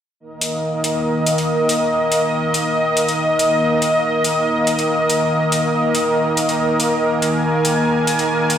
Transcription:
0.20 supersaw synth D#3 A#3 A#4 D#5
0.41 closed hi-hat
0.84 closed hi-hat
1.26 closed hi-hat
1.38 closed hi-hat
1.69 closed hi-hat
2.12 closed hi-hat
2.54 closed hi-hat
2.97 closed hi-hat
3.08 closed hi-hat
3.39 closed hi-hat
3.82 closed hi-hat
4.24 closed hi-hat
4.67 closed hi-hat
4.79 closed hi-hat
5.10 closed hi-hat
5.52 closed hi-hat
5.95 closed hi-hat
6.37 closed hi-hat
6.49 closed hi-hat
6.80 closed hi-hat
7.01 supersaw synth G#5
7.22 closed hi-hat
7.65 closed hi-hat
8.07 closed hi-hat
8.19 closed hi-hat
8.50 closed hi-hat

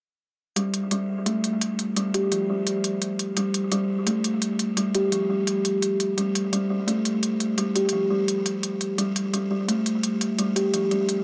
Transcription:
0.56 kalimba G3, closed hi-hat
0.74 closed hi-hat
0.91 kalimba G3, closed hi-hat
1.26 kalimba A3, closed hi-hat
1.44 closed hi-hat
1.61 closed hi-hat
1.79 closed hi-hat
1.97 kalimba G3, closed hi-hat
2.14 kalimba G4, closed hi-hat
2.32 kalimba F3, closed hi-hat
2.50 kalimba G3
2.67 closed hi-hat
2.84 closed hi-hat
3.02 closed hi-hat
3.19 closed hi-hat
3.37 kalimba G3, closed hi-hat
3.54 closed hi-hat
3.72 kalimba G3, closed hi-hat
4.07 kalimba A3, closed hi-hat
4.24 closed hi-hat
4.42 closed hi-hat
4.59 closed hi-hat
4.77 kalimba G3, closed hi-hat
4.95 kalimba G4, closed hi-hat
5.12 kalimba F3, closed hi-hat
5.30 kalimba G3
5.47 closed hi-hat
5.65 closed hi-hat
5.82 closed hi-hat
6.00 closed hi-hat
6.17 kalimba G3, closed hi-hat
6.35 closed hi-hat
6.53 kalimba G3, closed hi-hat
6.70 kalimba G3
6.88 kalimba A3, closed hi-hat
7.05 closed hi-hat
7.23 closed hi-hat
7.40 closed hi-hat
7.58 kalimba G3, closed hi-hat
7.75 kalimba G4, closed hi-hat
7.89 kalimba F3, closed hi-hat
8.10 kalimba G3
8.28 closed hi-hat
8.46 closed hi-hat
8.63 closed hi-hat
8.81 closed hi-hat
8.98 kalimba G3, closed hi-hat
9.16 closed hi-hat
9.33 kalimba G3, closed hi-hat
9.51 kalimba G3
9.68 kalimba A3, closed hi-hat
9.86 closed hi-hat
10.03 closed hi-hat
10.21 closed hi-hat
10.39 kalimba G3, closed hi-hat
10.56 kalimba G4, closed hi-hat
10.74 kalimba F3, closed hi-hat
10.91 kalimba G3, closed hi-hat
11.09 closed hi-hat

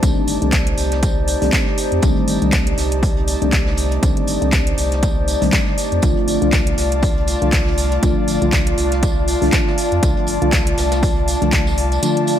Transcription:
Already playing: ambient pad A3 C4 G4 C5 D5, analog synth pad D#4 D5 A5
0.03 sub bass C2, fm electric piano D#3 G3 A3 C4 D4, kick, closed hi-hat, tambourine
0.27 sub bass G1, open hi-hat, tambourine
0.42 sub bass C2, fm electric piano D#3 G3 A3 C4 D4, closed hi-hat
0.52 kick, snare, clap, closed hi-hat, tambourine
0.67 closed hi-hat
0.78 sub bass C2, open hi-hat, tambourine
0.92 snare, closed hi-hat
1.03 kick, closed hi-hat, tambourine
1.28 open hi-hat, tambourine
1.42 sub bass C2, fm electric piano D#3 G3 A3 C4 D4, snare, open hi-hat
1.53 kick, snare, clap, closed hi-hat, tambourine
1.67 snare
1.78 open hi-hat, tambourine
1.92 sub bass F2, closed hi-hat
2.02 sub bass C2, fm electric piano D#3 G3 A3 C4 D4, kick, closed hi-hat, tambourine
2.16 closed hi-hat
2.28 sub bass G1, open hi-hat, tambourine
2.42 sub bass C2, fm electric piano D#3 G3 A3 C4 D4, closed hi-hat
2.52 kick, snare, clap, closed hi-hat, tambourine
2.67 closed hi-hat
2.78 sub bass C2, snare, open hi-hat, tambourine
2.92 closed hi-hat
3.03 kick, open hi-hat, tambourine
3.17 closed hi-hat
3.28 open hi-hat, tambourine
3.42 sub bass C2, fm electric piano D#3 G3 A3 C4 D4, closed hi-hat
3.52 kick, snare, clap, closed hi-hat, open hi-hat
3.66 snare
3.77 open hi-hat, tambourine
3.91 closed hi-hat
4.03 sub bass C2, fm electric piano D#3 G3 A3 C4 D4, kick, closed hi-hat, tambourine
4.17 closed hi-hat
4.27 sub bass G1, open hi-hat, tambourine
4.42 sub bass C2, fm electric piano D#3 G3 A3 C4 D4, closed hi-hat
4.52 kick, snare, clap, closed hi-hat, tambourine
4.67 closed hi-hat
4.78 sub bass C2, open hi-hat, tambourine
4.92 snare, closed hi-hat
5.03 kick, closed hi-hat, tambourine
5.28 open hi-hat, tambourine
5.41 sub bass C2, fm electric piano D#3 G3 A3 C4 D4, snare, open hi-hat
5.53 kick, snare, clap, closed hi-hat, tambourine
5.67 snare
5.78 open hi-hat, tambourine
5.92 sub bass F2, closed hi-hat
6.02 sub bass C2, fm electric piano D3 F3 A3 D4 F4, ambient pad D4 F4 D5 F5, analog synth pad F4, kick, closed hi-hat, tambourine
6.17 closed hi-hat
6.24 sub bass G1, analog synth pad A5, open hi-hat
6.28 tambourine
6.42 sub bass C2, fm electric piano D3 F3 A3 D4 F4, closed hi-hat
6.53 kick, snare, clap, closed hi-hat, tambourine
6.67 closed hi-hat
6.78 sub bass C2, snare, open hi-hat, tambourine
6.92 closed hi-hat
7.03 kick, open hi-hat, tambourine
7.17 closed hi-hat
7.27 open hi-hat, tambourine
7.42 sub bass C2, fm electric piano D3 F3 A3 D4 F4, closed hi-hat
7.52 kick, snare, clap, closed hi-hat, open hi-hat
7.67 snare
7.78 open hi-hat, tambourine
7.92 closed hi-hat
8.03 sub bass C2, fm electric piano D3 F3 A3 D4 F4, kick, closed hi-hat, tambourine
8.28 sub bass G1, open hi-hat, tambourine
8.42 sub bass C2, fm electric piano D3 F3 A3 D4 F4, closed hi-hat
8.52 kick, snare, clap, closed hi-hat, tambourine
8.67 closed hi-hat
8.78 sub bass C2, open hi-hat, tambourine
8.92 snare, closed hi-hat
9.03 kick, closed hi-hat, tambourine
9.28 open hi-hat, tambourine
9.42 sub bass C2, fm electric piano D3 F3 A3 D4 F4, snare, open hi-hat
9.52 kick, snare, clap, closed hi-hat, tambourine
9.67 snare
9.78 open hi-hat, tambourine
9.92 sub bass F2, closed hi-hat
10.03 sub bass C2, fm electric piano D3 F3 A3 D4 F4, kick, closed hi-hat, tambourine
10.17 closed hi-hat
10.27 sub bass G1, open hi-hat, tambourine
10.42 sub bass C2, fm electric piano D3 F3 A3 D4 F4, closed hi-hat
10.52 kick, snare, clap, closed hi-hat, tambourine
10.67 closed hi-hat
10.78 sub bass C2, snare, open hi-hat, tambourine
10.92 snare, closed hi-hat, tambourine
11.03 kick, open hi-hat, tambourine
11.16 closed hi-hat
11.28 open hi-hat, tambourine
11.42 sub bass C2, fm electric piano D3 F3 A3 D4 F4, closed hi-hat
11.52 kick, clap, closed hi-hat, tambourine
11.67 tambourine
11.78 closed hi-hat, open hi-hat
11.92 closed hi-hat, tambourine
12.03 fm electric piano D3 F3 A3 D4 F4, closed hi-hat, tambourine
12.17 closed hi-hat
12.27 open hi-hat, tambourine

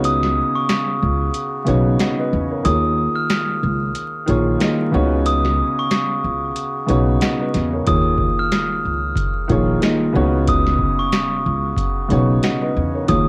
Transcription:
Already playing: upright bass C#2, upright piano C#3 B3 D#4 F#4 C#5
0.04 glockenspiel D#6, closed hi-hat
0.23 snare
0.55 glockenspiel C#6
0.69 snare, closed hi-hat
1.02 upright bass C#2
1.34 closed hi-hat
1.65 upright bass B1, upright piano C#3 B3 D#4 F#4 C#5, closed hi-hat
2.00 upright piano D#5 F#5, snare, closed hi-hat
2.19 upright piano B4 D#5
2.33 upright bass E2
2.51 upright piano A#4 C#5
2.63 upright bass D#2, upright piano D#3 A#3 F4 G#4 C#5, glockenspiel D#6, closed hi-hat
3.16 glockenspiel F6
3.30 snare, closed hi-hat
3.63 upright bass C#2
3.95 closed hi-hat
4.26 upright bass A#1, upright piano D#3 A#3 F4 G#4 C#5, closed hi-hat
4.58 upright piano D#3 A#3 F4 G#4 D#5, snare, closed hi-hat
4.90 upright bass C#2, upright piano C#3 B3 D#4 F#4 C#5
5.26 glockenspiel D#6, closed hi-hat
5.45 snare
5.79 glockenspiel C#6
5.91 snare, closed hi-hat
6.24 upright bass C#2
6.56 closed hi-hat
6.86 upright bass B1, upright piano C#3 B3 D#4 F#4 C#5, closed hi-hat
7.21 upright piano D#5 F#5, snare, closed hi-hat
7.41 upright piano B4 D#5
7.54 upright bass E2, snare, closed hi-hat
7.73 upright piano A#4 C#5
7.85 upright bass D#2, upright piano D#3 A#3 F4 G#4 C#5, glockenspiel D#6, kick, closed hi-hat
8.18 kick
8.39 glockenspiel F6
8.52 snare, closed hi-hat
8.85 upright bass C#2
9.16 kick, closed hi-hat
9.48 upright bass A#1, upright piano D#3 A#3 F4 G#4 C#5, kick, closed hi-hat
9.80 upright piano D#3 A#3 F4 G#4 D#5, snare, closed hi-hat
10.12 upright bass C#2, upright piano C#3 B3 D#4 F#4 C#5
10.47 glockenspiel D#6, kick, closed hi-hat
10.67 snare
10.79 kick
10.99 glockenspiel C#6
11.13 snare, closed hi-hat
11.46 upright bass C#2
11.76 kick, closed hi-hat
12.08 upright bass B1, upright piano C#3 B3 D#4 F#4 C#5, closed hi-hat
12.43 upright piano D#5 F#5, snare, closed hi-hat
12.62 upright piano B4 D#5
12.77 upright bass E2
12.95 upright piano A#4 C#5
13.06 upright bass D#2, upright piano D#3 A#3 F4 G#4 C#5, glockenspiel D#6, kick, closed hi-hat

